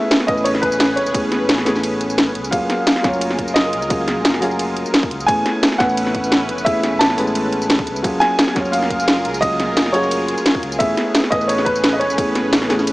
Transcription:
Already playing: A3 B3 C#4 E4 G#4 B4 E5
0.11 snare, closed hi-hat, ride, tambourine
0.20 snare
0.26 A1 A3 B3 C#4 E4 B4 D#5, kick, closed hi-hat
0.37 tambourine
0.44 C#5, closed hi-hat, ride, tambourine
0.55 snare
0.62 B4, kick, closed hi-hat
0.72 tambourine
0.80 snare, closed hi-hat, ride, tambourine
0.96 E1 C#5, closed hi-hat
1.06 tambourine
1.13 A3 B3 C#4 E4 G#4, kick, closed hi-hat, ride, tambourine
1.32 snare, closed hi-hat
1.41 A1
1.49 snare, closed hi-hat, ride, tambourine
1.58 snare
1.64 A1 A3 B3 C#4 E4 G#4, snare, open hi-hat, tambourine
1.75 snare, tambourine
1.83 closed hi-hat, ride, tambourine
2.01 closed hi-hat, tambourine
2.10 tambourine
2.18 snare, closed hi-hat, ride, tambourine
2.27 E1
2.35 C#2, closed hi-hat
2.44 tambourine
2.51 F#1 F#3 A#3 C#4 F4 G#4 A#4 F5, kick, closed hi-hat, ride, tambourine
2.70 snare, closed hi-hat
2.87 snare, closed hi-hat, ride, tambourine
2.96 snare
3.02 F#1 F#3 A#3 C#4 F4 C#5, kick, snare, closed hi-hat
3.13 tambourine
3.21 closed hi-hat, ride, tambourine
3.31 snare
3.39 kick, closed hi-hat
3.48 tambourine
3.54 D#5, snare, closed hi-hat, ride, tambourine
3.73 C#2, closed hi-hat
3.82 tambourine
3.89 F#3 A#3 C#4 F4 G#4, kick, closed hi-hat, ride, tambourine
4.08 snare, closed hi-hat
4.17 F#1
4.25 snare, closed hi-hat, ride, tambourine
4.34 snare
4.40 F#1 F#3 A#3 C#4 F4 G#4, open hi-hat
4.51 tambourine
4.59 closed hi-hat, ride, tambourine
4.77 closed hi-hat
4.86 tambourine
4.94 snare, closed hi-hat, ride, tambourine
5.03 kick
5.11 C#2, closed hi-hat
5.20 tambourine
5.26 A1 A3 B3 C#4 E4 G#4 B4 G#5, kick, closed hi-hat, ride, tambourine
5.46 snare, closed hi-hat
5.63 snare, closed hi-hat, ride, tambourine
5.72 snare
5.78 A1 A3 B3 C#4 E4 B4 F#5, kick, snare, closed hi-hat
5.89 tambourine
5.97 closed hi-hat, ride, tambourine
6.07 snare
6.15 kick, closed hi-hat
6.24 tambourine
6.32 snare, closed hi-hat, ride, tambourine
6.49 E1, closed hi-hat
6.58 tambourine
6.64 A3 B3 C#4 E4 G#4 E5, kick, closed hi-hat, ride, tambourine
6.83 snare, closed hi-hat
6.93 A1
6.99 A5, snare, closed hi-hat, ride, tambourine
7.10 snare
7.16 A1 G#3 A3 B3 C#4 E4, open hi-hat, tambourine
7.27 tambourine
7.35 closed hi-hat, ride, tambourine
7.53 closed hi-hat
7.62 tambourine
7.70 snare, closed hi-hat, ride, tambourine
7.79 E1, kick
7.87 C#2, closed hi-hat
7.96 tambourine
8.02 F#1 F#3 A#3 C#4 F4 G#4 A#4, kick, closed hi-hat, ride, tambourine
8.20 G#5, snare, closed hi-hat
8.39 snare, closed hi-hat, ride, tambourine
8.48 snare
8.54 F#1 F#3 A#3 C#4 F4 C#5, kick, snare, closed hi-hat
8.65 tambourine
8.72 F5, closed hi-hat, ride, tambourine
8.82 snare
8.90 kick, closed hi-hat
9.00 tambourine
9.08 snare, closed hi-hat, ride, tambourine
9.25 C#2, closed hi-hat
9.34 tambourine
9.40 F#3 A#3 C#4 F4 G#4 D#5, kick, closed hi-hat, ride, tambourine
9.60 snare, closed hi-hat
9.69 F#1
9.77 snare, closed hi-hat, ride, tambourine
9.86 snare
9.92 F#1 F#3 A#3 C#4 F4 G#4 C#5, open hi-hat
10.03 tambourine
10.11 closed hi-hat, ride, tambourine
10.28 closed hi-hat
10.38 tambourine
10.46 snare, closed hi-hat, ride, tambourine
10.55 kick
10.63 C#2, closed hi-hat
10.72 tambourine
10.78 A1 A3 B3 C#4 E4 G#4 B4 E5, kick, closed hi-hat, ride, tambourine
10.97 snare, closed hi-hat
11.15 snare, closed hi-hat, ride, tambourine
11.24 snare
11.30 A1 A3 B3 C#4 E4 B4 D#5, kick, closed hi-hat
11.41 tambourine
11.48 C#5, closed hi-hat, ride, tambourine
11.58 snare
11.65 B4, kick, closed hi-hat
11.76 tambourine
11.84 snare, closed hi-hat, ride, tambourine
11.93 D#5
11.99 E1 C#5, closed hi-hat
12.10 tambourine
12.16 A3 B3 C#4 E4 G#4, kick, closed hi-hat, ride, tambourine
12.35 snare, closed hi-hat
12.44 A1
12.53 snare, closed hi-hat, ride, tambourine
12.62 snare
12.68 A1 A3 B3 C#4 E4 G#4, snare, open hi-hat, tambourine
12.79 snare, tambourine
12.87 closed hi-hat, ride, tambourine

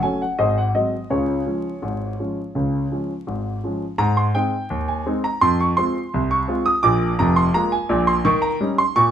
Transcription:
0.03 F#3 A3 C#4 G#5
0.22 F#5
0.38 G#1 G#2 G#4 C5 D#5
0.58 F#5
0.75 F#3 G#3 C4 D#5
1.10 C#2 C#3 F4 G#4 C#5
1.46 F3 G#3 C#4
1.82 G#1 G#2
2.19 F3 G#3 C#4
2.55 C#2 C#3
2.92 F3 G#3 C#4
3.27 G#1 G#2
3.64 F3 G#3 C#4
3.98 G#2 A#5
4.17 C6
4.34 G#3 C4 D#4 G5
4.70 D#2
4.88 G#5
5.06 G#3 C4 D#4
5.24 A#5
5.41 F2 C6
5.60 C#6
5.77 G#3 C4 F4 C6
6.14 C2
6.31 C#6
6.48 G#3 C4 F4
6.66 D#6
6.83 A#1 A#2 D6
7.19 F1 F2 A#5
7.36 C6
7.54 G#3 A#3 F4 A#5
7.72 G#5
7.89 A#1 A#2
8.07 C6
8.25 D#3 C#6
8.42 A#5
8.61 G3 C#4 D#4
8.78 C6
8.96 A#2 C#6

